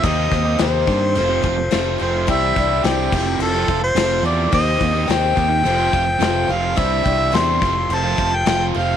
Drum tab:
CC |xxxxxxxx|xxxxxxxx|xxxxxxxx|xxxxxxxx|
SD |-ooo--o-|-ooo--o-|-oo---o-|--oo--o-|
BD |oo-o-o--|oo-o-o--|oo-o-o--|oo-o-o--|